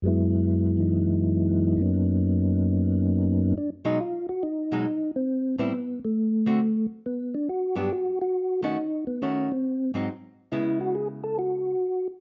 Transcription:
X:1
M:4/4
L:1/8
Q:"Swing" 1/4=138
K:B
V:1 name="Tonewheel organ"
[F,,F,G,B,E]3 [E,F,D]4- [E,F,D] | [F,,F,A,B,CD]8 | =D ^D ^E F D3 =C- | =C B,2 =A,4 z |
B, =D F =G F F2 ^D- | D B, C =C2 z3 | E F G =A F3 z |]
V:2 name="Hollow-body jazz guitar"
z8 | z8 | z [B,,F,G,D] z3 [B,,F,G,D] z2 | z [=A,,=G,=CE] z3 [=D,=A,CF] z2 |
z3 [=G,,F,B,=D] z3 [^D,=A,CF] | z2 [D,=A,CF] z2 [G,,F,^B,D] z2 | [C,G,B,E]4- [C,G,B,E] z3 |]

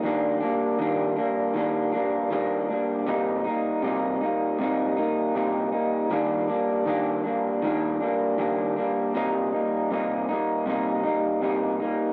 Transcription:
X:1
M:4/4
L:1/8
Q:"Swing 16ths" 1/4=79
K:Cm
V:1 name="Clean electric guitar"
[E,G,B,D] [G,B,D] [E,G,B,D] [G,B,D] [E,G,B,D] [G,B,D] [E,G,B,D] [G,B,D] | [C,G,B,E] [G,B,E] [C,G,B,E] [G,B,E] [C,G,B,E] [G,B,E] [C,G,B,E] [G,B,E] | [E,G,B,D] [G,B,D] [E,G,B,D] [G,B,D] [E,G,B,D] [G,B,D] [E,G,B,D] [G,B,D] | [C,G,B,E] [G,B,E] [C,G,B,E] [G,B,E] [C,G,B,E] [G,B,E] [C,G,B,E] [G,B,E] |]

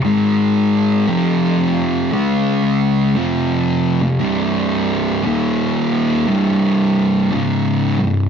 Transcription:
X:1
M:4/4
L:1/16
Q:"Swing" 1/4=58
K:Cm
V:1 name="Distorted electric guitar" clef=bass
[A,,E,A,]4 [F,,C,F,]4 [_D,A,_D]4 [F,,C,F,]3 [F,,C,] | [C,,G,,C,]4 [E,,B,,E,]4 [C,,G,,C,]4 [_D,,A,,_D,]2 [C,,G,,]2 |]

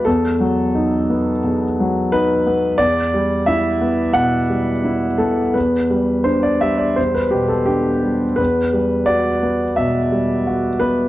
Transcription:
X:1
M:4/4
L:1/16
Q:1/4=87
K:Em
V:1 name="Grand piano"
A12 B4 | d4 e4 f6 A2 | B4 c d e d c B G A G4 | B4 d4 e6 B2 |]
V:2 name="Grand piano" clef=bass
E,,2 F,2 ^D2 B,2 E,,2 F,2 D2 B,2 | E,,2 G,2 E2 B,2 B,,2 G,2 E2 B,2 | E,,2 G,2 D2 G,2 E,,2 B,,2 D2 G,2 | E,,2 G,2 F2 B,2 B,,2 G,2 F2 B,2 |]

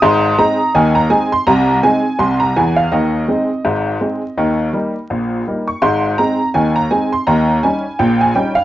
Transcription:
X:1
M:2/4
L:1/16
Q:"Swing 16ths" 1/4=83
K:Ab
V:1 name="Honky-tonk piano"
c'2 b2 a b a c' | b2 a2 c' b a f | e8- | e6 z d' |
c'2 b2 a b a c' | b2 a2 g a g f |]
V:2 name="Honky-tonk piano" clef=bass
[A,,,A,,]2 [A,CE]2 [E,,E,]2 [A,CE]2 | [C,,C,]2 [A,CE]2 [C,,C,]2 [_F,,_F,]2 | [E,,E,]2 [A,CE]2 [A,,,A,,]2 [A,CE]2 | [E,,E,]2 [G,B,E]2 [B,,,B,,]2 [G,B,E]2 |
[A,,,A,,]2 [A,CE]2 [E,,E,]2 [A,CE]2 | [E,,E,]2 [G,DE]2 [B,,,B,,]2 [G,DE]2 |]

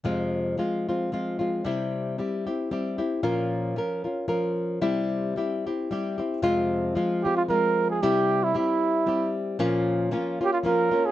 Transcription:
X:1
M:3/4
L:1/16
Q:"Swing" 1/4=113
K:Fm
V:1 name="Trumpet"
z12 | z12 | z12 | z12 |
z6 G F B3 A | G3 =E E6 z2 | z6 G F B3 A |]
V:2 name="Nylon-string guitar"
[F,,C,F,A,CF]4 [F,A,CF]2 [F,A,CF]2 [F,A,CF]2 [F,A,CF]2 | [C,G,C=EG]4 [G,CEG]2 [CEG]2 [G,CEG]2 [CEG]2 | [B,,F,DFB]4 [F,DFB]2 [DFB]2 [F,DFB]4 | [C,G,C=EG]4 [G,CEG]2 [CEG]2 [G,CEG]2 [CEG]2 |
[F,,C,F,A,CF]4 [F,A,CF]2 [F,A,CF]2 [F,A,CF]4 | [C,G,C=EG]4 [G,CEG]4 [G,CEG]4 | [B,,F,B,DF]4 [F,B,DF]2 [B,DF]2 [F,B,DF]2 [B,DF]2 |]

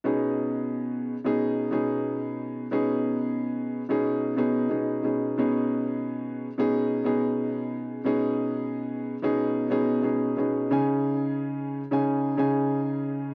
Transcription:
X:1
M:4/4
L:1/16
Q:"Swing 16ths" 1/4=90
K:B
V:1 name="Grand piano"
[B,,B,CDG]6 z [B,,B,CDG]3 [B,,B,CDG]6 | [B,,B,CDG]6 z [B,,B,CDG]3 [B,,B,CDG]2 [B,,B,CDG]2 [B,,B,CDG]2 | [B,,B,CDG]6 z [B,,B,CDG]3 [B,,B,CDG]6 | [B,,B,CDG]6 z [B,,B,CDG]3 [B,,B,CDG]2 [B,,B,CDG]2 [B,,B,CDG]2 |
[C,CDGg]6 z [C,CDGg]3 [C,CDGg]6 |]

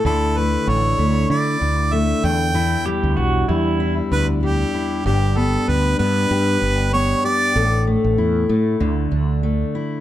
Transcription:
X:1
M:4/4
L:1/16
Q:"Swing 16ths" 1/4=96
K:Edor
V:1 name="Harmonica"
A2 B2 c4 d4 e2 g2- | g2 z8 B2 G4 | G2 A2 B2 B6 c2 d2- | d2 z12 z2 |]
V:2 name="Pedal steel guitar"
z16 | z2 G2 F2 E3 z6 z | z16 | z16 |]
V:3 name="Steel-string acoustic guitar"
[D,E]2 A,2 D2 A,2 E2 D2 A,2 E,,2 | [E,,E]2 G,2 D2 G,2 E2 D2 G,2 E2 | [G,,G]2 B,2 D2 B,2 G2 D2 B,2 G2 | [A,,A]2 A,2 E2 A,2 D,2 D2 A,2 E2 |]
V:4 name="Fretless electric bass" clef=bass
D,,4 A,,,2 D,,2 D,2 D,,4 E,,2- | E,,2 z D,, B,,,2 E,,4 D,,4 z2 | G,,,4 D,,2 G,,2 G,,2 G,,,4 z2 | A,,,3 A,,, E,,2 A,,2 D,,2 D,,4 z2 |]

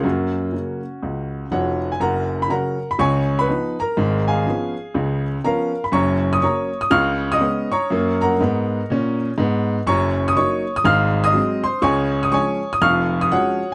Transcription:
X:1
M:4/4
L:1/16
Q:"Swing" 1/4=122
K:F#
V:1 name="Upright piano"
[A,CF]12 [Fcf]3 g | [Afa]3 b [Afa]3 b [cgc']3 [Bb]3 [Aa]2- | [Aa]2 [Geg]8 z2 [Aea]3 b | [cac']3 d' [cac']3 d' [ec'e']3 [dd']3 [cac']2- |
[cac']2 [Afa]8 z6 | [K:Db] [dbd']3 e' [dd']3 e' [ff']3 [ee']3 [cc']2 | [dad']3 e' [dad']3 e' [fd'f']3 e' [Gdg]3 z |]
V:2 name="Upright piano" clef=bass
F,,4 [C,F,A,]4 C,,4 [E,,,E,,]4 | [F,,,F,,]4 [C,F,C]4 [C,,C,]4 [E,B,D]4 | [G,,,G,,]4 [E,B,C]4 [C,,C,]4 [E,B,C]4 | [F,,,F,,]4 [F,A,C]4 [C,,C,]4 [G,B,C]4 |
[F,,A,]4 [G,,B,]4 [A,,C]4 [G,,B,]4 | [K:Db] [G,,,G,,]4 [G,B,E]4 [A,,,A,,]4 [G,A,C]4 | [D,,D,]4 [F,A,D]4 [F,,,F,,]4 [F,A,D]4 |]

